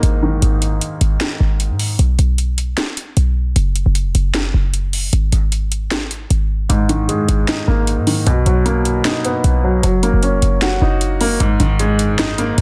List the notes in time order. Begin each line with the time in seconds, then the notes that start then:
Already playing: G#2 D#3 G#3 A#3 D#4
0.03 G#1, closed hi-hat
0.22 D#3
0.42 G#1, closed hi-hat
0.62 closed hi-hat
0.81 closed hi-hat
1.01 G#1, closed hi-hat
1.20 finger snap, snare, closed hi-hat
1.40 G#1
1.60 closed hi-hat
1.70 G#2
1.79 open hi-hat
1.99 B1, closed hi-hat
2.19 B1, closed hi-hat
2.38 closed hi-hat
2.58 closed hi-hat
2.77 finger snap, snare, closed hi-hat
2.97 closed hi-hat
3.17 B1, closed hi-hat
3.56 F#1, closed hi-hat
3.76 closed hi-hat
3.86 F#1
3.95 closed hi-hat
4.06 F1
4.15 F#1, closed hi-hat
4.34 finger snap, snare, closed hi-hat
4.54 F#1
4.74 closed hi-hat
4.93 open hi-hat
5.13 G#1, closed hi-hat
5.32 G#1, closed hi-hat
5.52 closed hi-hat
5.72 closed hi-hat
5.90 finger snap, snare, closed hi-hat
6.11 closed hi-hat
6.30 G#1, closed hi-hat
6.69 G#1 G#2, closed hi-hat
6.89 D#3, closed hi-hat
7.09 G#3, closed hi-hat
7.29 G#1, closed hi-hat
7.47 D#4, finger snap, snare, closed hi-hat
7.68 G#1 A#3
7.87 closed hi-hat
7.98 G#2
8.07 D#3, open hi-hat
8.27 B1 B2, closed hi-hat
8.46 B1 F#3, closed hi-hat
8.65 A#3, closed hi-hat
8.85 closed hi-hat
9.04 D#4, finger snap, snare, closed hi-hat
9.25 B3, closed hi-hat
9.44 B1, closed hi-hat
9.64 F#3
9.83 F#1 F#3, closed hi-hat
10.03 A#3, closed hi-hat
10.13 F#1
10.22 C#4, closed hi-hat
10.33 F1
10.42 F#1, closed hi-hat
10.61 F#4, finger snap, snare, closed hi-hat
10.81 F#1 D#4
11.01 closed hi-hat
11.21 A#3, open hi-hat
11.40 G#1 G#2, closed hi-hat
11.60 G#1 D#3, closed hi-hat
11.79 G#3, closed hi-hat
11.99 closed hi-hat
12.18 D#4, finger snap, snare, closed hi-hat
12.38 A#3, closed hi-hat
12.58 G#1, closed hi-hat